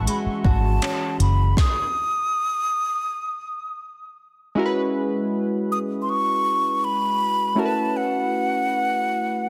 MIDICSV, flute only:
0, 0, Header, 1, 2, 480
1, 0, Start_track
1, 0, Key_signature, 4, "major"
1, 0, Tempo, 750000
1, 1005, Time_signature, 4, 2, 24, 8
1, 6074, End_track
2, 0, Start_track
2, 0, Title_t, "Flute"
2, 0, Program_c, 0, 73
2, 60, Note_on_c, 0, 83, 88
2, 112, Note_off_c, 0, 83, 0
2, 300, Note_on_c, 0, 81, 102
2, 747, Note_off_c, 0, 81, 0
2, 779, Note_on_c, 0, 83, 87
2, 996, Note_off_c, 0, 83, 0
2, 1021, Note_on_c, 0, 87, 114
2, 2427, Note_off_c, 0, 87, 0
2, 3660, Note_on_c, 0, 87, 97
2, 3702, Note_off_c, 0, 87, 0
2, 3853, Note_on_c, 0, 84, 75
2, 3900, Note_on_c, 0, 85, 113
2, 3909, Note_off_c, 0, 84, 0
2, 4380, Note_on_c, 0, 83, 111
2, 4389, Note_off_c, 0, 85, 0
2, 4859, Note_on_c, 0, 81, 110
2, 4869, Note_off_c, 0, 83, 0
2, 5099, Note_on_c, 0, 78, 105
2, 5109, Note_off_c, 0, 81, 0
2, 6074, Note_off_c, 0, 78, 0
2, 6074, End_track
0, 0, End_of_file